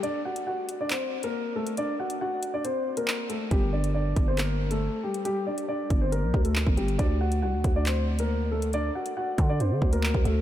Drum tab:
HH |x--x--x-x--x---x|x--x--x-x--x--x-|x--x--x-x--x---x|x--x--x-x--x--xx|
CP |--------x-------|------------x---|--------x-------|------------x---|
BD |----------------|----------------|o-----o---------|------o---o--o--|

HH |x--x--x-x--x---x|x--x--x-x--x--x-|
CP |--------x-------|------------x---|
BD |o-----o---------|------o---o--o--|